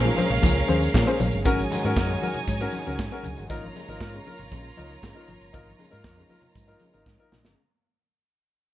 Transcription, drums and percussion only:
0.05 muted conga soft
0.18 closed hi-hat medium
0.18 high conga loud
0.30 closed hi-hat soft
0.30 low conga medium
0.42 kick loud
0.42 closed hi-hat loud
0.42 muted conga soft
0.42 high conga medium
0.68 closed hi-hat medium
0.68 high conga medium
0.81 closed hi-hat soft
0.94 kick loud
0.94 snare loud
0.94 muted conga soft
1.08 closed hi-hat soft
1.20 closed hi-hat medium
1.20 high conga medium
1.20 low conga medium
1.31 closed hi-hat soft
1.45 kick loud
1.45 closed hi-hat medium
1.58 closed hi-hat soft
1.58 high conga medium
1.71 closed hi-hat medium
1.71 high conga medium
1.84 closed hi-hat soft
1.96 kick loud
1.96 snare loud
2.10 closed hi-hat soft
2.23 closed hi-hat medium
2.23 high conga medium
2.34 closed hi-hat soft
2.34 low conga medium
2.48 kick loud
2.48 closed hi-hat medium
2.48 high conga medium
2.60 closed hi-hat soft
2.60 muted conga soft
2.72 closed hi-hat medium
2.72 high conga medium
2.85 closed hi-hat soft
2.98 kick loud
2.98 snare loud
2.98 muted conga soft
3.11 muted conga soft
3.23 closed hi-hat medium
3.23 high conga medium
3.23 low conga medium
3.37 closed hi-hat soft
3.50 kick loud
3.50 closed hi-hat medium
3.63 muted conga soft
3.63 high conga medium
3.76 closed hi-hat medium
3.76 high conga medium
3.89 closed hi-hat soft
4.00 kick loud
4.00 snare loud
4.00 muted conga soft
4.13 muted conga soft
4.27 closed hi-hat medium
4.27 high conga medium
4.38 closed hi-hat soft
4.38 low conga medium
4.52 kick loud
4.52 closed hi-hat medium
4.52 high conga medium
4.64 closed hi-hat soft
4.64 muted conga soft
4.77 closed hi-hat medium
4.77 high conga medium
4.90 closed hi-hat medium
5.03 kick loud
5.03 snare loud
5.15 closed hi-hat soft
5.15 muted conga soft
5.28 closed hi-hat medium
5.28 high conga medium
5.28 low conga medium
5.40 closed hi-hat soft
5.54 kick loud
5.54 closed hi-hat medium
5.54 muted conga soft
5.54 low conga medium
5.67 muted conga soft
5.67 high conga medium
5.79 closed hi-hat medium
5.79 high conga medium
5.92 closed hi-hat soft
6.04 kick loud
6.04 snare loud
6.04 muted conga soft
6.17 muted conga soft
6.30 open hi-hat medium
6.30 high conga medium
6.42 closed hi-hat soft
6.42 low conga medium
6.55 kick loud
6.55 closed hi-hat medium
6.55 muted conga soft
6.55 high conga medium
6.68 muted conga soft
6.79 closed hi-hat medium
6.79 high conga medium
6.93 closed hi-hat soft
7.06 kick loud
7.06 snare medium
7.18 muted conga soft
7.32 snare medium
7.32 high conga medium
7.32 low conga medium
7.45 snare loud

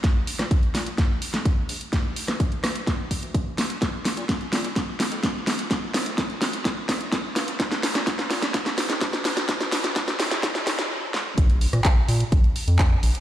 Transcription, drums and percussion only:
0.04 kick loud
0.04 snare medium
0.04 closed hi-hat medium
0.27 open hi-hat loud
0.39 cross-stick medium
0.39 snare medium
0.39 closed hi-hat soft
0.51 kick loud
0.51 closed hi-hat medium
0.63 closed hi-hat soft
0.75 snare medium
0.75 open hi-hat loud
0.86 closed hi-hat soft
0.98 kick loud
0.98 snare medium
0.98 closed hi-hat medium
1.22 open hi-hat loud
1.34 snare medium
1.34 closed hi-hat medium
1.45 kick loud
1.45 closed hi-hat medium
1.69 open hi-hat loud
1.81 closed hi-hat medium
1.93 kick loud
1.93 snare medium
1.93 closed hi-hat medium
2.16 open hi-hat loud
2.28 cross-stick medium
2.28 snare medium
2.28 closed hi-hat soft
2.40 kick loud
2.40 closed hi-hat medium
2.52 closed hi-hat soft
2.64 cross-stick medium
2.64 snare medium
2.64 open hi-hat loud
2.75 closed hi-hat soft
2.87 kick loud
2.87 snare medium
2.87 closed hi-hat medium
3.11 kick medium
3.11 open hi-hat loud
3.23 closed hi-hat soft
3.34 kick loud
3.34 closed hi-hat medium
3.58 snare medium
3.58 open hi-hat loud
3.70 closed hi-hat soft
3.82 kick loud
3.82 snare medium
3.82 closed hi-hat medium
4.05 snare medium
4.05 open hi-hat loud
4.17 closed hi-hat medium
4.29 kick loud
4.29 snare medium
4.29 closed hi-hat medium
4.41 closed hi-hat soft
4.53 snare medium
4.53 open hi-hat loud
4.64 closed hi-hat soft
4.76 kick loud
4.76 snare medium
4.76 closed hi-hat medium
5.00 snare medium
5.00 open hi-hat loud
5.12 closed hi-hat soft
5.23 kick loud
5.23 snare medium
5.23 closed hi-hat medium
5.47 snare medium
5.47 open hi-hat loud
5.59 closed hi-hat medium
5.71 kick loud
5.71 snare medium
5.71 closed hi-hat medium
5.94 snare medium
5.94 open hi-hat loud
6.06 closed hi-hat medium
6.18 kick loud
6.18 snare medium
6.18 closed hi-hat medium
6.30 closed hi-hat soft
6.42 snare medium
6.42 open hi-hat loud
6.53 closed hi-hat medium
6.65 kick loud
6.65 snare medium
6.65 closed hi-hat medium
6.89 kick medium
6.89 snare medium
6.89 open hi-hat loud
7.01 closed hi-hat medium
7.12 kick loud
7.12 snare medium
7.12 closed hi-hat medium
7.36 snare medium
7.36 open hi-hat loud
7.48 closed hi-hat medium
7.60 kick loud
7.60 snare medium
7.60 closed hi-hat medium
7.71 snare medium
7.83 snare loud
7.83 open hi-hat loud
7.95 snare medium
7.95 closed hi-hat medium
8.07 kick loud
8.07 snare medium
8.07 closed hi-hat medium
8.19 snare medium
8.19 closed hi-hat soft
8.30 snare loud
8.30 open hi-hat loud
8.42 snare medium
8.42 closed hi-hat medium
8.54 kick loud
8.54 snare loud
8.54 closed hi-hat medium
8.66 snare medium
8.78 snare loud
8.78 open hi-hat loud
8.90 snare medium
8.90 closed hi-hat medium
9.01 kick loud
9.01 snare loud
9.01 closed hi-hat medium
9.13 snare medium
9.25 snare loud
9.25 open hi-hat loud
9.37 snare medium
9.37 closed hi-hat medium
9.49 kick loud
9.49 snare loud
9.49 closed hi-hat medium
9.61 snare medium
9.61 closed hi-hat soft
9.72 snare loud
9.72 open hi-hat loud
9.84 snare medium
9.84 closed hi-hat medium
9.96 kick loud
9.96 snare loud
9.96 closed hi-hat medium
10.08 snare medium
10.08 closed hi-hat soft
10.20 snare loud
10.20 open hi-hat loud
10.31 snare medium
10.31 closed hi-hat medium
10.43 kick loud
10.43 snare loud
10.43 closed hi-hat medium
10.55 snare medium
10.55 closed hi-hat soft
10.67 kick medium
10.67 snare loud
10.67 open hi-hat loud
10.79 snare medium
10.79 closed hi-hat medium
11.14 snare loud
11.38 kick loud
11.38 closed hi-hat medium
11.49 closed hi-hat soft
11.61 open hi-hat loud
11.73 cross-stick medium
11.73 closed hi-hat medium
11.85 kick loud
11.85 clap loud
11.85 closed hi-hat medium
12.09 open hi-hat loud
12.20 closed hi-hat medium
12.32 kick loud
12.32 closed hi-hat medium
12.44 closed hi-hat soft
12.56 open hi-hat loud
12.68 closed hi-hat medium
12.79 kick loud
12.79 clap loud
12.79 closed hi-hat medium
13.03 open hi-hat loud
13.15 closed hi-hat medium

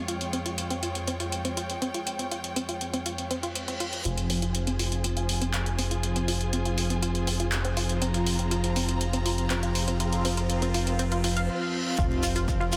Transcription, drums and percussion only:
0.08 closed hi-hat medium
0.21 closed hi-hat soft
0.33 closed hi-hat medium
0.46 closed hi-hat soft
0.58 closed hi-hat medium
0.70 closed hi-hat soft
0.83 closed hi-hat medium
0.95 closed hi-hat soft
1.08 closed hi-hat medium
1.20 closed hi-hat soft
1.32 closed hi-hat medium
1.45 closed hi-hat soft
1.57 closed hi-hat medium
1.70 closed hi-hat soft
1.82 closed hi-hat medium
1.94 closed hi-hat soft
2.07 closed hi-hat medium
2.19 closed hi-hat soft
2.31 closed hi-hat medium
2.44 closed hi-hat soft
2.56 closed hi-hat medium
2.69 closed hi-hat soft
2.81 closed hi-hat medium
2.94 closed hi-hat soft
3.06 closed hi-hat medium
3.18 closed hi-hat soft
3.31 closed hi-hat medium
3.43 closed hi-hat soft
3.55 closed hi-hat medium
3.68 closed hi-hat soft
3.80 closed hi-hat medium
3.93 closed hi-hat soft
4.05 closed hi-hat medium
4.18 closed hi-hat soft
4.30 open hi-hat loud
4.42 closed hi-hat soft
4.55 closed hi-hat medium
4.67 closed hi-hat soft
4.79 open hi-hat medium
4.92 closed hi-hat soft
5.04 closed hi-hat medium
5.17 closed hi-hat soft
5.29 open hi-hat loud
5.42 closed hi-hat soft
5.54 clap loud
5.54 closed hi-hat medium
5.66 closed hi-hat soft
5.79 open hi-hat medium
5.91 closed hi-hat soft
6.03 closed hi-hat medium
6.16 closed hi-hat soft
6.28 open hi-hat loud
6.41 closed hi-hat soft
6.53 closed hi-hat medium
6.65 closed hi-hat soft
6.78 open hi-hat medium
6.90 closed hi-hat soft
7.03 closed hi-hat medium
7.15 closed hi-hat soft
7.27 open hi-hat loud
7.40 closed hi-hat soft
7.52 clap loud
7.52 closed hi-hat medium
7.65 closed hi-hat soft
7.77 open hi-hat medium
7.89 closed hi-hat soft
8.02 closed hi-hat medium
8.14 closed hi-hat soft
8.26 open hi-hat loud
8.39 closed hi-hat soft
8.51 closed hi-hat medium
8.64 closed hi-hat soft
8.76 open hi-hat loud
8.89 closed hi-hat soft
9.01 closed hi-hat medium
9.13 closed hi-hat soft
9.26 open hi-hat loud
9.38 closed hi-hat soft
9.50 clap loud
9.50 closed hi-hat medium
9.63 closed hi-hat soft
9.75 open hi-hat loud
9.88 closed hi-hat soft
10.00 closed hi-hat medium
10.13 closed hi-hat soft
10.25 open hi-hat loud
10.37 closed hi-hat soft
10.50 closed hi-hat medium
10.62 closed hi-hat soft
10.74 open hi-hat medium
10.87 closed hi-hat soft
10.99 closed hi-hat medium
11.12 closed hi-hat soft
11.24 open hi-hat loud
11.37 closed hi-hat soft
11.98 kick loud
11.98 closed hi-hat medium
11.98 shekere soft
12.11 closed hi-hat soft
12.23 open hi-hat loud
12.23 shekere loud
12.35 closed hi-hat soft
12.35 shekere soft
12.48 kick loud
12.48 closed hi-hat medium
12.48 shekere medium
12.61 closed hi-hat soft
12.72 open hi-hat loud
12.72 shekere loud

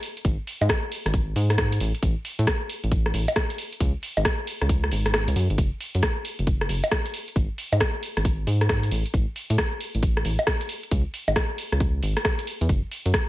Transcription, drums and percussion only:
0.03 open hi-hat medium
0.17 closed hi-hat soft
0.25 kick loud
0.25 closed hi-hat medium
0.47 open hi-hat loud
0.61 closed hi-hat medium
0.61 high bongo medium
0.69 kick loud
0.69 cross-stick loud
0.69 closed hi-hat medium
0.92 open hi-hat medium
1.06 cross-stick medium
1.06 closed hi-hat soft
1.14 kick loud
1.14 closed hi-hat medium
1.36 open hi-hat loud
1.50 cross-stick medium
1.50 closed hi-hat medium
1.58 kick loud
1.58 cross-stick loud
1.72 closed hi-hat medium
1.80 open hi-hat medium
1.95 closed hi-hat soft
2.03 kick loud
2.03 closed hi-hat medium
2.25 open hi-hat loud
2.39 closed hi-hat medium
2.47 kick loud
2.47 cross-stick loud
2.47 closed hi-hat medium
2.69 open hi-hat medium
2.84 closed hi-hat soft
2.92 kick loud
2.92 closed hi-hat medium
3.06 cross-stick medium
3.14 open hi-hat loud
3.28 closed hi-hat medium
3.28 high bongo medium
3.36 kick loud
3.36 cross-stick loud
3.50 closed hi-hat medium
3.58 open hi-hat medium
3.73 closed hi-hat soft
3.80 kick loud
3.80 closed hi-hat medium
4.03 open hi-hat loud
4.17 closed hi-hat medium
4.17 high bongo medium
4.25 kick loud
4.25 cross-stick loud
4.25 closed hi-hat medium
4.47 open hi-hat medium
4.61 cross-stick medium
4.61 closed hi-hat soft
4.69 kick loud
4.69 closed hi-hat medium
4.84 cross-stick medium
4.92 open hi-hat loud
5.06 cross-stick medium
5.06 closed hi-hat medium
5.14 cross-stick loud
5.28 closed hi-hat medium
5.36 open hi-hat medium
5.50 closed hi-hat soft
5.58 kick loud
5.58 closed hi-hat medium
5.81 open hi-hat loud
5.95 closed hi-hat medium
6.03 kick loud
6.03 cross-stick loud
6.03 closed hi-hat medium
6.25 open hi-hat medium
6.39 closed hi-hat soft
6.47 kick loud
6.47 closed hi-hat medium
6.61 cross-stick medium
6.69 open hi-hat loud
6.84 closed hi-hat medium
6.84 high bongo medium
6.91 kick loud
6.91 cross-stick loud
7.06 closed hi-hat medium
7.14 open hi-hat medium
7.28 closed hi-hat soft
7.36 kick loud
7.36 closed hi-hat medium
7.58 open hi-hat loud
7.72 closed hi-hat medium
7.72 high bongo medium
7.80 kick loud
7.80 cross-stick loud
7.80 closed hi-hat medium
8.03 open hi-hat medium
8.17 cross-stick medium
8.17 closed hi-hat soft
8.25 kick loud
8.25 closed hi-hat medium
8.47 open hi-hat loud
8.61 cross-stick medium
8.61 closed hi-hat medium
8.69 kick loud
8.69 cross-stick loud
8.83 closed hi-hat medium
8.91 open hi-hat medium
9.06 closed hi-hat soft
9.14 kick loud
9.14 closed hi-hat medium
9.36 open hi-hat loud
9.50 closed hi-hat medium
9.58 kick loud
9.58 cross-stick loud
9.58 closed hi-hat medium
9.81 open hi-hat medium
9.95 closed hi-hat soft
10.03 kick loud
10.03 closed hi-hat medium
10.17 cross-stick medium
10.25 open hi-hat loud
10.39 closed hi-hat medium
10.39 high bongo medium
10.47 kick loud
10.47 cross-stick loud
10.61 closed hi-hat medium
10.69 open hi-hat medium
10.83 closed hi-hat soft
10.91 kick loud
10.91 closed hi-hat medium
11.14 open hi-hat loud
11.28 closed hi-hat medium
11.28 high bongo medium
11.36 kick loud
11.36 cross-stick loud
11.36 closed hi-hat medium
11.58 open hi-hat medium
11.72 cross-stick medium
11.72 closed hi-hat soft
11.80 kick loud
11.80 closed hi-hat medium
12.03 open hi-hat loud
12.17 cross-stick medium
12.17 closed hi-hat medium
12.25 kick loud
12.25 cross-stick loud
12.39 closed hi-hat medium
12.47 open hi-hat medium
12.61 closed hi-hat soft
12.69 kick loud
12.69 closed hi-hat medium
12.91 open hi-hat medium
13.06 closed hi-hat medium
13.14 kick loud
13.14 cross-stick loud
13.14 closed hi-hat medium

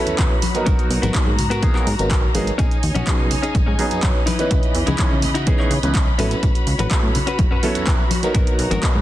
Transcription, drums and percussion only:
0.07 closed hi-hat medium
0.07 tambourine medium
0.18 kick loud
0.18 clap loud
0.18 closed hi-hat medium
0.18 tambourine medium
0.30 tambourine soft
0.42 open hi-hat loud
0.42 high conga medium
0.55 closed hi-hat medium
0.55 tambourine medium
0.66 kick loud
0.66 closed hi-hat medium
0.66 tambourine medium
0.79 closed hi-hat soft
0.79 tambourine soft
0.91 open hi-hat loud
1.03 closed hi-hat soft
1.03 tambourine medium
1.03 high conga medium
1.14 kick loud
1.14 clap loud
1.14 closed hi-hat medium
1.28 tambourine soft
1.39 open hi-hat loud
1.39 low conga medium
1.51 closed hi-hat soft
1.51 tambourine medium
1.63 kick loud
1.63 closed hi-hat medium
1.63 tambourine medium
1.63 high conga medium
1.75 clap soft
1.75 tambourine soft
1.87 open hi-hat loud
1.99 closed hi-hat soft
1.99 tambourine medium
2.11 kick loud
2.11 clap loud
2.11 closed hi-hat medium
2.23 tambourine soft
2.35 open hi-hat loud
2.35 high conga medium
2.47 closed hi-hat soft
2.47 tambourine medium
2.59 kick loud
2.59 closed hi-hat medium
2.59 tambourine medium
2.71 closed hi-hat soft
2.71 tambourine soft
2.83 open hi-hat loud
2.95 closed hi-hat soft
2.95 tambourine medium
2.95 high conga medium
3.07 kick loud
3.07 clap loud
3.07 closed hi-hat medium
3.07 tambourine medium
3.19 tambourine soft
3.31 open hi-hat loud
3.31 low conga medium
3.43 closed hi-hat soft
3.43 tambourine medium
3.55 kick loud
3.55 closed hi-hat medium
3.55 tambourine medium
3.55 high conga medium
3.68 tambourine soft
3.79 open hi-hat loud
3.91 closed hi-hat medium
3.91 tambourine medium
4.03 kick loud
4.03 clap loud
4.03 closed hi-hat medium
4.16 tambourine soft
4.27 open hi-hat loud
4.27 high conga medium
4.39 closed hi-hat soft
4.39 tambourine medium
4.51 kick loud
4.51 closed hi-hat medium
4.51 tambourine medium
4.63 closed hi-hat soft
4.63 tambourine soft
4.75 open hi-hat loud
4.87 closed hi-hat soft
4.87 tambourine medium
4.87 high conga medium
4.98 kick loud
4.98 clap loud
4.98 closed hi-hat medium
4.98 tambourine medium
5.11 tambourine soft
5.22 open hi-hat loud
5.22 low conga medium
5.35 closed hi-hat soft
5.35 tambourine medium
5.47 kick loud
5.47 closed hi-hat medium
5.47 tambourine medium
5.47 high conga medium
5.59 clap soft
5.59 tambourine soft
5.71 open hi-hat loud
5.83 closed hi-hat soft
5.83 tambourine medium
5.95 kick loud
5.95 clap loud
5.95 closed hi-hat medium
5.95 tambourine medium
6.08 tambourine soft
6.19 open hi-hat loud
6.19 high conga medium
6.31 closed hi-hat soft
6.31 tambourine medium
6.43 kick loud
6.43 closed hi-hat medium
6.43 tambourine medium
6.55 closed hi-hat soft
6.55 tambourine soft
6.67 open hi-hat loud
6.79 closed hi-hat medium
6.79 tambourine medium
6.79 high conga medium
6.91 kick loud
6.91 clap loud
6.91 closed hi-hat medium
6.91 tambourine medium
7.03 tambourine soft
7.15 open hi-hat loud
7.15 low conga loud
7.27 closed hi-hat medium
7.27 tambourine medium
7.38 kick loud
7.38 closed hi-hat medium
7.38 tambourine medium
7.38 high conga medium
7.52 tambourine soft
7.63 open hi-hat loud
7.75 closed hi-hat medium
7.75 tambourine medium
7.87 kick loud
7.87 clap loud
7.87 closed hi-hat medium
7.87 tambourine medium
8.00 tambourine soft
8.11 open hi-hat loud
8.11 high conga medium
8.23 closed hi-hat medium
8.23 tambourine medium
8.35 kick loud
8.35 closed hi-hat medium
8.35 tambourine medium
8.47 closed hi-hat soft
8.47 tambourine soft
8.59 open hi-hat loud
8.71 closed hi-hat medium
8.71 tambourine medium
8.71 high conga loud
8.83 kick loud
8.83 clap loud
8.83 closed hi-hat medium
8.96 tambourine soft

